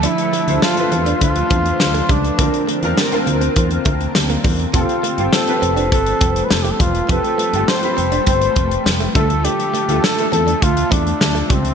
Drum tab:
HH |xxxx-xxxxxxx-xxx|xxxx-xxxxxxx-xox|xxxx-xxxxxxx-xxx|xxxx-xxxxxxx-xxx|
SD |----o-------o---|----o-------o---|----o-------o---|----o-------o---|
BD |--------o-o---o-|o-------o-o---o-|o-------o-o---o-|o-------o-o---o-|

HH |xxxx-xxxxxxx-xxx|
SD |----o-------o---|
BD |--------o-o---o-|